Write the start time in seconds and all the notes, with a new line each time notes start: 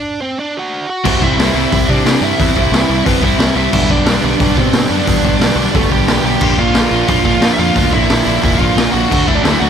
Already playing: D4 D5
0.21 C4 C5
0.39 D4 D5
0.57 F#4 F#5
0.89 F#4 F#5
1.04 C2 C3 G3 C4 E4, kick, crash
1.21 C2 C3 G3 C4 E4 E5, kick
1.37 C2 C3 G3 C4 E4, snare, open hi-hat
1.54 C2 C3 G3 C4 E4
1.71 C2 C3 G3 C4 E4 E5, kick, open hi-hat
1.88 C3 G3 C4 D4 E4 D5, kick
2.04 C3 G3 C4 E4, snare, open hi-hat
2.21 G2 C3 G3 C4 E4 E5
2.39 E2 C3 G3 C4 E4, kick, open hi-hat
2.55 C2 C3 G3 C4 E4, kick
2.72 C2 C3 G3 C4 E4, snare, open hi-hat
2.87 C2 C3 G3 C4 E4
3.05 G1 C3 G3 B3 C4 E4 B4, kick, open hi-hat
3.22 C2 C3 G3 C4 E4 E5, kick
3.38 C2 C3 G3 C4 E4, snare, open hi-hat
3.56 C2 C3 G3 C4 E4 E5
3.72 B1 G2 B2 D3 G3 B3 D4, kick, crash
3.89 B1 G2 B2 D3 G3 B3 D4 D5, kick
4.05 B1 G2 B2 D3 G3 B3 D4, snare, open hi-hat
4.21 B1 G2 B2 D3 G3 B3 D4
4.38 B1 G2 B2 D3 G3 B3 D4, kick, open hi-hat
4.43 D5
4.56 G2 B2 D3 G3 B3 C4 D4 C5, kick
4.72 G2 B2 D3 G3 B3 D4, snare, open hi-hat
4.89 F#2 G2 B2 D3 G3 B3 D4 D5
5.06 E2 G2 B2 D3 G3 B3 D4, kick, open hi-hat
5.23 B1 G2 B2 D3 G3 B3 D4, kick
5.39 B1 G2 B2 D3 G3 B3 D4, snare, open hi-hat
5.56 B1 G2 B2 D3 G3 B3 D4
5.73 F#1 G2 B2 D3 G3 A3 B3 D4 A4, kick, open hi-hat
5.91 B1 G2 B2 D3 G3 B3 D4 G4 G5, kick
6.07 B1 G2 B2 D3 G3 B3 D4, snare, open hi-hat
6.24 B1 G2 B2 D3 G3 B3 D4 G4 G5
6.41 A#1 A#2 D3 F3 A#3 D4, kick, crash
6.58 A#1 A#2 D3 F3 A#3 D4 F4 F5, kick
6.75 A#1 A#2 D3 F3 A#3 D4, snare, open hi-hat
6.91 A#1 A#2 D3 F3 A#3 D4
7.08 A#1 A#2 D3 F3 A#3 D4 F4 F5, kick, open hi-hat
7.24 A#2 D3 F3 A#3 D4 F4 F5, kick
7.41 A#2 D3 F3 A#3 D4, snare, open hi-hat
7.53 E5
7.58 F2 A#2 D3 F3 A#3 D4 F4 F5
7.75 D2 A#2 D3 F3 A#3 D4, kick, open hi-hat
7.92 A#1 A#2 D3 F3 A#3 D4 E4 E5, kick
8.09 A#1 A#2 D3 F3 A#3 D4, snare, open hi-hat
8.26 A#1 A#2 D3 F3 A#3 D4
8.42 F1 A#2 D3 F3 A#3 D4 E4 E5, kick, open hi-hat
8.58 A#1 A#2 D3 F3 A#3 D4 F4 F5, kick
8.76 A#1 A#2 D3 F3 A#3 D4, snare, open hi-hat
8.92 A#1 A#2 D3 F3 A#3 D4 F#4 F#5
9.09 D2 D3 F#3 A3 D4, kick, crash
9.27 D2 D3 F#3 A3 D4 E4 E5, kick
9.35 D4 D5
9.43 D2 D3 F#3 A3 D4 E4 E5, snare, open hi-hat
9.60 D2 D3 F#3 A3 D4 F#4 F#5